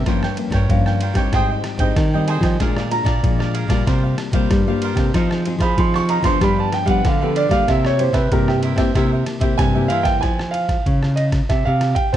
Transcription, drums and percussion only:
0.06 kick, cross-stick, ride
0.23 cross-stick
0.37 ride
0.52 kick, cross-stick, ride
0.70 kick, ride
0.86 cross-stick
1.01 ride
1.15 kick, cross-stick, ride
1.33 kick, cross-stick, ride
1.64 cross-stick, ride
1.79 kick, ride
1.96 kick, cross-stick, ride
2.28 ride
2.43 kick, cross-stick, ride
2.60 kick, cross-stick, ride
2.77 cross-stick
2.91 ride
3.06 kick, cross-stick, ride
3.24 kick, ride
3.40 cross-stick
3.55 ride
3.70 kick, cross-stick, ride
3.87 kick, cross-stick, ride
4.18 cross-stick, ride
4.33 kick, ride
4.51 kick, cross-stick, ride
4.82 ride
4.97 kick, cross-stick, ride
5.14 kick, cross-stick, ride
5.31 cross-stick
5.45 ride
5.60 kick, cross-stick, ride
5.78 kick, ride
5.94 cross-stick
6.09 ride
6.24 kick, cross-stick, ride
6.41 kick, cross-stick, ride
6.72 cross-stick, ride
6.87 kick, ride
7.05 kick, cross-stick, ride
7.36 ride
7.51 kick, cross-stick, ride
7.68 kick, cross-stick, ride
7.85 cross-stick
7.99 ride
8.14 kick, cross-stick, ride
8.32 kick, ride
8.48 cross-stick
8.63 ride
8.78 kick, cross-stick, ride
8.95 kick, cross-stick, ride
9.26 cross-stick, ride
9.41 kick, ride
9.59 kick, cross-stick, ride
9.90 ride
10.05 kick, cross-stick, ride
10.23 kick, cross-stick, ride
10.39 cross-stick
10.54 ride
10.69 kick, cross-stick, ride
10.86 kick, ride
11.03 cross-stick
11.17 ride
11.32 kick, cross-stick, ride
11.50 kick, cross-stick, ride
11.81 cross-stick, ride
11.96 kick, ride
12.14 kick

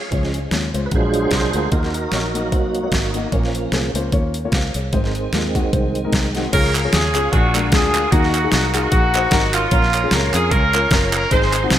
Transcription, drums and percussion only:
0.12 kick, closed hi-hat
0.23 snare
0.34 closed hi-hat
0.51 snare, closed hi-hat
0.74 closed hi-hat
0.91 kick, closed hi-hat
1.14 closed hi-hat
1.31 kick, snare, closed hi-hat
1.53 closed hi-hat
1.72 kick, closed hi-hat
1.83 snare
1.94 closed hi-hat
2.12 snare, closed hi-hat
2.35 closed hi-hat
2.52 kick, closed hi-hat
2.75 closed hi-hat
2.92 kick, snare, closed hi-hat
3.14 closed hi-hat
3.32 kick, closed hi-hat
3.43 snare
3.55 closed hi-hat
3.72 snare, closed hi-hat
3.95 closed hi-hat
4.12 kick, closed hi-hat
4.34 closed hi-hat
4.52 kick, snare, closed hi-hat
4.74 closed hi-hat
4.93 kick, closed hi-hat
5.04 snare
5.15 closed hi-hat
5.33 snare, closed hi-hat
5.55 kick, closed hi-hat
5.73 kick, closed hi-hat
5.95 closed hi-hat
6.12 kick, snare, closed hi-hat
6.35 snare, closed hi-hat
6.53 kick, closed hi-hat, crash
6.64 snare
6.75 clap, closed hi-hat
6.93 snare, closed hi-hat
7.15 clap, closed hi-hat
7.33 kick, closed hi-hat
7.55 clap, closed hi-hat
7.72 kick, snare, closed hi-hat
7.94 clap, closed hi-hat
8.12 kick, closed hi-hat
8.23 snare
8.34 clap, closed hi-hat
8.52 snare, closed hi-hat
8.75 clap, closed hi-hat
8.92 kick, closed hi-hat
9.14 clap, closed hi-hat
9.31 kick, snare, closed hi-hat
9.53 clap, closed hi-hat
9.71 kick, closed hi-hat
9.82 snare
9.94 clap, closed hi-hat
10.11 snare, closed hi-hat
10.34 clap, closed hi-hat
10.51 kick, closed hi-hat
10.73 clap, closed hi-hat
10.91 kick, snare, closed hi-hat
11.13 clap, closed hi-hat
11.31 kick, closed hi-hat
11.42 snare
11.53 clap, closed hi-hat
11.70 snare, closed hi-hat

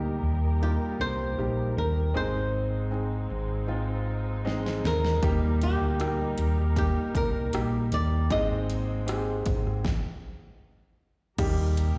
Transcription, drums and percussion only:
4.47 snare
4.66 snare
4.85 snare
5.05 snare
5.23 kick, closed hi-hat
5.62 closed hi-hat
6.00 cross-stick, closed hi-hat
6.38 closed hi-hat
6.58 cross-stick
6.76 kick, closed hi-hat
7.15 kick, closed hi-hat
7.53 cross-stick, closed hi-hat
7.92 closed hi-hat
8.31 kick, closed hi-hat
8.70 closed hi-hat
9.08 cross-stick, closed hi-hat
9.46 kick, closed hi-hat
9.67 cross-stick
9.85 kick, snare
11.38 kick, closed hi-hat, crash
11.77 closed hi-hat

